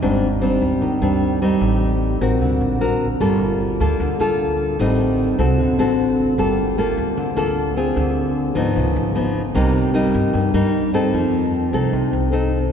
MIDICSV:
0, 0, Header, 1, 3, 480
1, 0, Start_track
1, 0, Key_signature, -2, "minor"
1, 0, Tempo, 396825
1, 28, Time_signature, 4, 2, 24, 8
1, 15387, End_track
2, 0, Start_track
2, 0, Title_t, "Nylon-string guitar"
2, 0, Program_c, 0, 24
2, 25, Note_on_c, 0, 55, 51
2, 27, Note_on_c, 0, 44, 53
2, 31, Note_on_c, 0, 60, 52
2, 37, Note_on_c, 0, 62, 64
2, 336, Note_off_c, 0, 55, 0
2, 338, Note_off_c, 0, 60, 0
2, 342, Note_off_c, 0, 62, 0
2, 500, Note_on_c, 0, 55, 53
2, 506, Note_on_c, 0, 60, 57
2, 513, Note_on_c, 0, 62, 57
2, 966, Note_off_c, 0, 44, 0
2, 979, Note_on_c, 0, 51, 57
2, 1188, Note_off_c, 0, 55, 0
2, 1188, Note_off_c, 0, 60, 0
2, 1194, Note_off_c, 0, 62, 0
2, 1229, Note_on_c, 0, 55, 56
2, 1234, Note_on_c, 0, 60, 61
2, 1236, Note_on_c, 0, 62, 62
2, 1672, Note_off_c, 0, 55, 0
2, 1675, Note_off_c, 0, 60, 0
2, 1675, Note_off_c, 0, 62, 0
2, 1716, Note_on_c, 0, 55, 61
2, 1719, Note_on_c, 0, 60, 55
2, 1721, Note_on_c, 0, 63, 66
2, 1922, Note_off_c, 0, 51, 0
2, 1946, Note_on_c, 0, 45, 49
2, 2637, Note_off_c, 0, 55, 0
2, 2637, Note_off_c, 0, 60, 0
2, 2639, Note_off_c, 0, 63, 0
2, 2675, Note_on_c, 0, 60, 50
2, 2682, Note_on_c, 0, 66, 52
2, 2683, Note_on_c, 0, 70, 55
2, 2886, Note_off_c, 0, 45, 0
2, 2912, Note_on_c, 0, 50, 53
2, 3357, Note_off_c, 0, 60, 0
2, 3360, Note_off_c, 0, 66, 0
2, 3360, Note_off_c, 0, 70, 0
2, 3395, Note_on_c, 0, 60, 51
2, 3400, Note_on_c, 0, 66, 54
2, 3403, Note_on_c, 0, 70, 65
2, 3704, Note_off_c, 0, 60, 0
2, 3707, Note_off_c, 0, 66, 0
2, 3708, Note_off_c, 0, 70, 0
2, 3850, Note_off_c, 0, 50, 0
2, 3876, Note_on_c, 0, 58, 51
2, 3878, Note_on_c, 0, 55, 54
2, 3880, Note_on_c, 0, 65, 53
2, 3885, Note_on_c, 0, 69, 58
2, 4352, Note_off_c, 0, 58, 0
2, 4355, Note_off_c, 0, 65, 0
2, 4357, Note_off_c, 0, 69, 0
2, 4598, Note_on_c, 0, 58, 61
2, 4609, Note_on_c, 0, 65, 53
2, 4612, Note_on_c, 0, 69, 63
2, 4814, Note_off_c, 0, 55, 0
2, 4843, Note_on_c, 0, 50, 56
2, 5040, Note_off_c, 0, 58, 0
2, 5042, Note_off_c, 0, 65, 0
2, 5046, Note_off_c, 0, 69, 0
2, 5080, Note_on_c, 0, 58, 63
2, 5085, Note_on_c, 0, 65, 63
2, 5092, Note_on_c, 0, 69, 68
2, 5760, Note_off_c, 0, 58, 0
2, 5763, Note_off_c, 0, 65, 0
2, 5767, Note_off_c, 0, 69, 0
2, 5776, Note_off_c, 0, 50, 0
2, 5800, Note_on_c, 0, 45, 53
2, 5803, Note_on_c, 0, 60, 58
2, 5804, Note_on_c, 0, 55, 56
2, 5811, Note_on_c, 0, 63, 57
2, 6481, Note_off_c, 0, 60, 0
2, 6482, Note_off_c, 0, 55, 0
2, 6486, Note_off_c, 0, 63, 0
2, 6514, Note_on_c, 0, 60, 60
2, 6520, Note_on_c, 0, 66, 56
2, 6526, Note_on_c, 0, 69, 61
2, 6736, Note_off_c, 0, 45, 0
2, 6763, Note_on_c, 0, 50, 48
2, 6958, Note_off_c, 0, 60, 0
2, 6961, Note_off_c, 0, 66, 0
2, 6962, Note_off_c, 0, 69, 0
2, 7004, Note_on_c, 0, 60, 57
2, 7009, Note_on_c, 0, 66, 59
2, 7014, Note_on_c, 0, 69, 61
2, 7683, Note_off_c, 0, 60, 0
2, 7686, Note_off_c, 0, 66, 0
2, 7687, Note_off_c, 0, 69, 0
2, 7697, Note_off_c, 0, 50, 0
2, 7719, Note_on_c, 0, 55, 56
2, 7719, Note_on_c, 0, 58, 52
2, 7727, Note_on_c, 0, 65, 49
2, 7732, Note_on_c, 0, 69, 63
2, 8159, Note_off_c, 0, 58, 0
2, 8164, Note_off_c, 0, 65, 0
2, 8166, Note_off_c, 0, 69, 0
2, 8201, Note_on_c, 0, 58, 59
2, 8213, Note_on_c, 0, 65, 59
2, 8213, Note_on_c, 0, 69, 64
2, 8656, Note_off_c, 0, 55, 0
2, 8673, Note_on_c, 0, 50, 54
2, 8883, Note_off_c, 0, 58, 0
2, 8884, Note_off_c, 0, 65, 0
2, 8887, Note_off_c, 0, 69, 0
2, 8907, Note_on_c, 0, 58, 64
2, 8914, Note_on_c, 0, 65, 63
2, 8922, Note_on_c, 0, 69, 67
2, 9354, Note_off_c, 0, 58, 0
2, 9356, Note_off_c, 0, 65, 0
2, 9361, Note_off_c, 0, 69, 0
2, 9393, Note_on_c, 0, 60, 63
2, 9400, Note_on_c, 0, 65, 55
2, 9403, Note_on_c, 0, 68, 67
2, 9611, Note_off_c, 0, 50, 0
2, 9633, Note_on_c, 0, 50, 56
2, 10317, Note_off_c, 0, 60, 0
2, 10320, Note_off_c, 0, 68, 0
2, 10321, Note_off_c, 0, 65, 0
2, 10343, Note_on_c, 0, 53, 59
2, 10349, Note_on_c, 0, 59, 58
2, 10357, Note_on_c, 0, 63, 58
2, 10571, Note_off_c, 0, 50, 0
2, 10596, Note_on_c, 0, 49, 52
2, 11031, Note_off_c, 0, 53, 0
2, 11033, Note_off_c, 0, 59, 0
2, 11038, Note_off_c, 0, 63, 0
2, 11071, Note_on_c, 0, 53, 51
2, 11074, Note_on_c, 0, 59, 54
2, 11080, Note_on_c, 0, 63, 57
2, 11383, Note_off_c, 0, 53, 0
2, 11383, Note_off_c, 0, 59, 0
2, 11387, Note_off_c, 0, 63, 0
2, 11532, Note_off_c, 0, 49, 0
2, 11546, Note_on_c, 0, 48, 57
2, 11548, Note_on_c, 0, 55, 58
2, 11555, Note_on_c, 0, 63, 65
2, 11559, Note_on_c, 0, 58, 56
2, 11992, Note_off_c, 0, 55, 0
2, 11995, Note_off_c, 0, 58, 0
2, 11997, Note_off_c, 0, 63, 0
2, 12019, Note_on_c, 0, 55, 61
2, 12024, Note_on_c, 0, 58, 53
2, 12032, Note_on_c, 0, 63, 68
2, 12488, Note_off_c, 0, 48, 0
2, 12497, Note_on_c, 0, 43, 56
2, 12709, Note_off_c, 0, 55, 0
2, 12709, Note_off_c, 0, 58, 0
2, 12714, Note_off_c, 0, 63, 0
2, 12746, Note_on_c, 0, 55, 60
2, 12752, Note_on_c, 0, 58, 53
2, 12752, Note_on_c, 0, 63, 67
2, 13191, Note_off_c, 0, 55, 0
2, 13194, Note_off_c, 0, 58, 0
2, 13194, Note_off_c, 0, 63, 0
2, 13230, Note_on_c, 0, 60, 64
2, 13238, Note_on_c, 0, 63, 59
2, 13241, Note_on_c, 0, 69, 70
2, 13440, Note_off_c, 0, 43, 0
2, 13476, Note_on_c, 0, 53, 55
2, 14151, Note_off_c, 0, 60, 0
2, 14156, Note_off_c, 0, 63, 0
2, 14156, Note_off_c, 0, 69, 0
2, 14195, Note_on_c, 0, 60, 58
2, 14201, Note_on_c, 0, 63, 54
2, 14202, Note_on_c, 0, 69, 65
2, 14409, Note_off_c, 0, 53, 0
2, 14428, Note_on_c, 0, 48, 50
2, 14874, Note_off_c, 0, 60, 0
2, 14875, Note_off_c, 0, 63, 0
2, 14877, Note_off_c, 0, 69, 0
2, 14902, Note_on_c, 0, 60, 56
2, 14911, Note_on_c, 0, 63, 54
2, 14916, Note_on_c, 0, 69, 57
2, 15215, Note_off_c, 0, 60, 0
2, 15217, Note_off_c, 0, 63, 0
2, 15221, Note_off_c, 0, 69, 0
2, 15363, Note_off_c, 0, 48, 0
2, 15387, End_track
3, 0, Start_track
3, 0, Title_t, "Upright bass"
3, 0, Program_c, 1, 32
3, 29, Note_on_c, 1, 32, 93
3, 701, Note_off_c, 1, 32, 0
3, 750, Note_on_c, 1, 39, 85
3, 973, Note_off_c, 1, 39, 0
3, 991, Note_on_c, 1, 39, 84
3, 1214, Note_off_c, 1, 39, 0
3, 1233, Note_on_c, 1, 39, 80
3, 1904, Note_off_c, 1, 39, 0
3, 1951, Note_on_c, 1, 33, 87
3, 2624, Note_off_c, 1, 33, 0
3, 2676, Note_on_c, 1, 33, 93
3, 2923, Note_off_c, 1, 33, 0
3, 2923, Note_on_c, 1, 38, 85
3, 3142, Note_off_c, 1, 38, 0
3, 3157, Note_on_c, 1, 34, 83
3, 3828, Note_off_c, 1, 34, 0
3, 3877, Note_on_c, 1, 31, 95
3, 4549, Note_off_c, 1, 31, 0
3, 4600, Note_on_c, 1, 38, 88
3, 4821, Note_off_c, 1, 38, 0
3, 4834, Note_on_c, 1, 38, 89
3, 5058, Note_off_c, 1, 38, 0
3, 5074, Note_on_c, 1, 38, 82
3, 5748, Note_off_c, 1, 38, 0
3, 5797, Note_on_c, 1, 33, 88
3, 6469, Note_off_c, 1, 33, 0
3, 6516, Note_on_c, 1, 36, 94
3, 6756, Note_off_c, 1, 36, 0
3, 6756, Note_on_c, 1, 38, 85
3, 6980, Note_off_c, 1, 38, 0
3, 7000, Note_on_c, 1, 33, 78
3, 7671, Note_off_c, 1, 33, 0
3, 7718, Note_on_c, 1, 31, 85
3, 8390, Note_off_c, 1, 31, 0
3, 8438, Note_on_c, 1, 38, 88
3, 8661, Note_off_c, 1, 38, 0
3, 8677, Note_on_c, 1, 38, 87
3, 8901, Note_off_c, 1, 38, 0
3, 8915, Note_on_c, 1, 38, 84
3, 9588, Note_off_c, 1, 38, 0
3, 9634, Note_on_c, 1, 38, 96
3, 10307, Note_off_c, 1, 38, 0
3, 10351, Note_on_c, 1, 44, 84
3, 10595, Note_on_c, 1, 37, 86
3, 10613, Note_off_c, 1, 44, 0
3, 10819, Note_off_c, 1, 37, 0
3, 10838, Note_on_c, 1, 32, 88
3, 11508, Note_off_c, 1, 32, 0
3, 11555, Note_on_c, 1, 36, 95
3, 12226, Note_off_c, 1, 36, 0
3, 12272, Note_on_c, 1, 43, 94
3, 12496, Note_off_c, 1, 43, 0
3, 12513, Note_on_c, 1, 43, 84
3, 12736, Note_off_c, 1, 43, 0
3, 12748, Note_on_c, 1, 43, 78
3, 13422, Note_off_c, 1, 43, 0
3, 13471, Note_on_c, 1, 41, 95
3, 14142, Note_off_c, 1, 41, 0
3, 14188, Note_on_c, 1, 36, 92
3, 14412, Note_off_c, 1, 36, 0
3, 14429, Note_on_c, 1, 36, 85
3, 14653, Note_off_c, 1, 36, 0
3, 14673, Note_on_c, 1, 36, 83
3, 15341, Note_off_c, 1, 36, 0
3, 15387, End_track
0, 0, End_of_file